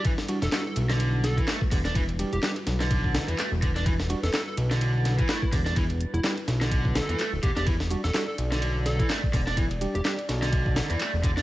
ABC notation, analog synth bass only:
X:1
M:4/4
L:1/16
Q:"Swing 16ths" 1/4=126
K:Em
V:1 name="Analog synth bass" clef=bass
z3 E,,, z2 B,,,4- B,,, z3 E,,,2- | E,,,2 z E,,, z2 B,,,4 z E,, z E,,,3- | E,,,2 z E,,, z2 B,,,4- B,,, z3 E,,,2- | E,,,2 z E,,, z2 B,,,4 z E,, z D,,, E,,, E,,,- |
E,,,2 z E,,, z2 B,,,4- B,,, z3 E,,,2- | E,,,2 z E,,, z2 B,,,4 z E,, z E,,,3 |]